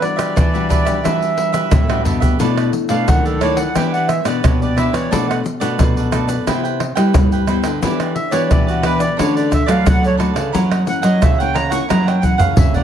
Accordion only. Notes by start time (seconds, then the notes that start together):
0.02 D5
0.69 D5
1.03 E5
2.89 F5
3.08 F#5
3.25 A4
3.41 C#5
3.56 F#5
3.75 G5
3.93 F#5
4.08 E5
4.26 D5
4.44 C#5
4.62 D5
4.76 E5
4.93 C#5
5.10 D5
5.29 F#5
8.15 E5
8.32 C#5
8.50 D5
8.68 F#4
8.84 B4
9.00 D5
9.19 C#5
9.37 D5
9.54 E5
9.70 F5
9.88 F#5
10.06 C#5
10.88 F#5
11.04 D#5
11.22 E5
11.40 G5
11.55 A#5
11.71 C#6
11.90 A#5
12.07 G5
12.22 F#5
12.39 F5
12.57 E5
12.74 D5